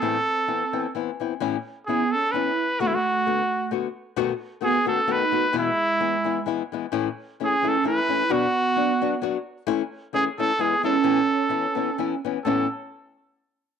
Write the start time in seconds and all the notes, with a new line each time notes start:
0.00 A2 E3 B3 C4 E4 A4
0.48 E3 B3 C4 E4
0.73 E3 B3 C4 E4
0.95 E3 B3 C4 E4
1.20 E3 B3 C4 E4
1.40 A2 E3 B3 C#4 E4
1.86 E3 B3 C#4 E4 G#4
2.12 C#4 A4
2.32 E3 B3 C#4 E4 B4
2.80 D3 A3 B3 F#4
2.87 G#3 E4
2.95 A3 F#4
3.26 D3 A3 B3 F#4
3.71 D3 A3 B3 F#4
4.16 B2 D#3 A3 B3 F#4
4.61 D#3 A3 B3 F#4 G#4
4.66 B3
4.85 D#3 A3 B3 F#4 A4
4.92 C#4
5.07 D#3 A3 B3 F#4
5.12 D#4 B4
5.31 D#3 A3 B3 F#4
5.53 E2 B2 E3 G#3 B3 E4
5.59 G#3 E4
6.00 E3 G#3 B3 E4
6.24 E3 G#3 B3 E4
6.46 E3 G#3 B3 E4
6.72 E3 G#3 B3 E4
6.92 A2 E3 A3 C#4 E4
7.40 E3 A3 C#4 E4
7.45 G#4
7.62 E3 A3 C#4 E4
7.68 A4
7.83 E3 A3 C#4 E4
7.87 B4
8.08 E3 A3 C#4 E4
8.29 B2 F#3 B3 D4 F#4
8.33 F#4
8.76 F#3 B3 D4 F#4
9.01 F#3 B3 D4 F#4
9.21 F#3 B3 D4 F#4
9.67 E3 A3 C#4 E4
10.13 E3 A3 C#4 E4 G#4
10.38 E3 A3 C#4 E4 A4
10.59 E3 G#3 B3 E4 G#4
10.83 E3 G#3 B3 C#4 E4 A4
11.04 A2 E3 B3 C#4 E4
11.49 E3 B3 C#4 E4
11.75 E3 B3 C#4 E4
11.98 E3 B3 C#4 E4
12.25 E3 B3 C#4 E4
12.45 A2 E3 B3 C#4 E4 A4